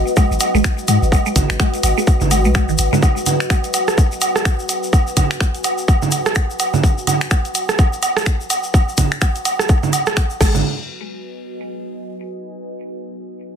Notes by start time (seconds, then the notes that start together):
Already playing: F#4 B4 D#5
0.07 shaker
0.16 G#3, kick, low woodblock, shaker
0.31 G#1, shaker
0.40 closed hi-hat, low woodblock, shaker
0.55 G#1 G#3, shaker
0.64 finger snap, kick, low woodblock, shaker
0.78 shaker
0.88 G#2 G#3, closed hi-hat, low woodblock, shaker
1.02 G#1, shaker
1.12 kick, low woodblock, shaker
1.26 G#3, shaker
1.36 G#1, kick, closed hi-hat, low conga, low woodblock, shaker
1.50 G#1, finger snap, closed hi-hat, shaker
1.60 G#3, finger snap, kick, low woodblock, shaker
1.74 closed hi-hat, shaker
1.83 G#1, closed hi-hat, low woodblock, shaker
1.98 G#3, shaker
2.07 kick, low woodblock, shaker
2.21 G#1, low conga, shaker
2.31 G#3, closed hi-hat, low woodblock, shaker
2.45 B1 G#3, shaker
2.55 G#3, finger snap, kick, low woodblock, shaker
2.69 G#1 D#3, shaker
2.78 G#1, closed hi-hat, low woodblock, shaker
2.93 G#3, low conga, shaker
3.03 kick, low woodblock, shaker
3.17 G#5, shaker
3.26 closed hi-hat, low conga, low woodblock, shaker
3.40 finger snap, closed hi-hat, shaker
3.50 finger snap, kick, low woodblock, shaker
3.64 closed hi-hat, shaker
3.74 closed hi-hat, low woodblock, shaker
3.88 cross-stick, shaker
3.98 kick, low woodblock, shaker
4.12 shaker
4.21 closed hi-hat, low woodblock, shaker
4.36 cross-stick, shaker
4.45 finger snap, kick, low woodblock, shaker
4.59 shaker
4.69 closed hi-hat, low woodblock, shaker
4.83 shaker
4.93 kick, low woodblock, shaker
5.07 shaker
5.17 kick, closed hi-hat, low conga, low woodblock, shaker
5.31 finger snap, closed hi-hat, shaker
5.41 finger snap, kick, low woodblock, shaker
5.55 closed hi-hat, shaker
5.64 closed hi-hat, low woodblock, shaker
5.78 shaker
5.88 kick, low woodblock, shaker
6.02 low conga, shaker
6.11 closed hi-hat, low woodblock, shaker
6.26 cross-stick, shaker
6.35 finger snap, kick, low woodblock, shaker
6.50 shaker
6.59 closed hi-hat, low woodblock, shaker
6.74 low conga, shaker
6.83 kick, low woodblock, shaker
6.98 shaker
7.07 closed hi-hat, low conga, low woodblock, shaker
7.21 finger snap, closed hi-hat, shaker
7.31 finger snap, kick, low woodblock, shaker
7.45 closed hi-hat, shaker
7.55 closed hi-hat, low woodblock, shaker
7.69 cross-stick, shaker
7.79 kick, low woodblock, shaker
7.93 shaker
8.03 closed hi-hat, low woodblock, shaker
8.17 cross-stick, shaker
8.26 finger snap, kick, low woodblock, shaker
8.41 shaker
8.50 closed hi-hat, low woodblock, shaker
8.63 shaker
8.74 kick, low woodblock, shaker
8.89 shaker
8.97 kick, closed hi-hat, low conga, low woodblock, shaker
9.12 finger snap, closed hi-hat, shaker
9.21 finger snap, kick, low woodblock, shaker
9.35 closed hi-hat, shaker
9.45 closed hi-hat, low woodblock, shaker
9.59 cross-stick, shaker
9.69 kick, low woodblock, shaker
9.83 low conga, shaker
9.93 closed hi-hat, low woodblock, shaker
10.06 cross-stick, shaker
10.17 finger snap, kick, low woodblock, shaker
10.30 shaker
10.41 G#1 G#3 F#4, kick, cross-stick, crash, low woodblock, shaker
10.49 B4
10.55 low conga, shaker
10.80 D#5